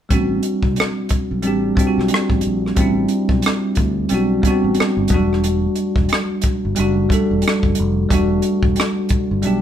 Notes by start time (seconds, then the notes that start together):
0.09 A1 G3 C4 D4, kick, closed hi-hat
0.14 F#4
0.43 closed hi-hat
0.63 C2, kick
0.76 cross-stick, closed hi-hat
1.09 muted fingered electric bass stroke, kick, closed hi-hat
1.31 B1
1.42 A1 G3 C4 D4, closed hi-hat
1.47 G4
1.76 G3 C4 D4, kick, closed hi-hat
1.81 F4
1.87 F#4
1.98 B1, cross-stick
2.08 closed hi-hat
2.14 cross-stick
2.30 A1, kick
2.41 closed hi-hat
2.45 A#1
2.66 cross-stick
2.76 A1 G3 C4 D4, kick, closed hi-hat
2.81 E4
3.08 closed hi-hat
3.29 B1, kick
3.42 cross-stick, closed hi-hat
3.75 D2, kick, closed hi-hat
4.09 B1 G3 C4 D4, closed hi-hat
4.14 F#4
4.42 G3 B3 D4, kick, closed hi-hat
4.47 C4 F#4
4.64 A1
4.75 muted fingered electric bass stroke, closed hi-hat
4.80 cross-stick
4.97 G1
5.08 E1 F#3 A3, kick, closed hi-hat
5.13 G3 D4 F#4
5.33 cross-stick
5.44 closed hi-hat
5.76 closed hi-hat
5.96 E1, kick
6.09 cross-stick, closed hi-hat
6.42 muted fingered electric bass stroke, kick, closed hi-hat
6.65 G1
6.75 F#1 G3 A3 D4, closed hi-hat
6.80 F#4
7.09 G3 A3 D4, kick, closed hi-hat
7.14 A4
7.31 E1
7.42 closed hi-hat
7.48 cross-stick
7.63 F#1, kick
7.75 F1, closed hi-hat
8.09 E1 G3 A3 D4, kick, closed hi-hat
8.14 F#4
8.42 closed hi-hat
8.63 E1, kick
8.76 cross-stick, closed hi-hat
9.09 muted fingered electric bass stroke, kick, closed hi-hat
9.31 G1
9.42 B1 G3 A3 D4, closed hi-hat
9.47 G4